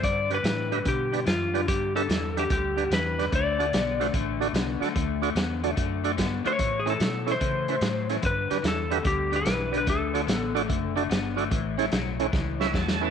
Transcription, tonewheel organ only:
0.30 D4 G4 B4 D5
0.72 D4 G4 B4 E5
1.13 D4 G4 B4 D5
1.54 D4 G4 B4 D5
1.95 D4 G4 B4 E5
2.37 D4 G4 B4 E5
2.77 D4 G4 B4 D5
3.18 D4 G4 B4 D5
3.58 D4 F#4 A4 D5
4.00 D4 F#4 A4 C5
4.40 D4 F#4 A4 D5
4.80 D4 F#4 A4 D5
5.22 D4 F#4 A4 D5
5.63 D4 F#4 A4 D5
6.04 D4 F#4 A4 D5
6.45 D4 F#4 A4 B4
6.86 C#4 E4 A4 C#5
7.26 C#4 E4 A4 C#5
7.68 C#4 E4 A4 B4
8.09 C#4 E4 A4 C#5
8.51 D4 G4 B4 D5
8.91 D4 G4 B4 E5
9.32 D4 G4 B4 D5
9.72 D4 G4 B4 D5
10.14 D4 F#4 A4 D5
10.55 D4 F#4 A4 D5
10.96 D4 F#4 A4 D5
11.36 D4 F#4 A4 D5
11.78 C#4 E4 A4 C#5
12.19 C#4 E4 A4 C#5
12.60 C#4 E4 A4 C#5 E5
12.75 A5
13.01 C#4 E4 A4 B4

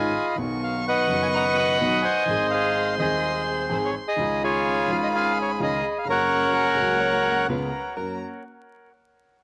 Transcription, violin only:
Already playing: B5
0.38 C#6
2.28 C6
4.19 B5
6.07 A#5
6.55 G#5
7.02 A#5
7.25 F#5
7.48 A#5
7.96 A#5

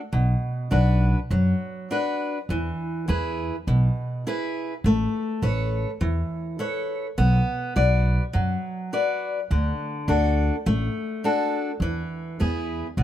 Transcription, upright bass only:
0.13 B1
0.72 B1
1.30 F#2
2.49 E2
3.08 E2
3.67 B1
4.84 A1
5.42 A1
6.01 E2
7.18 B1
7.76 B1
8.34 F#2
9.51 D2
10.08 D2
10.66 A1
11.80 E2
12.41 E2
12.97 B1

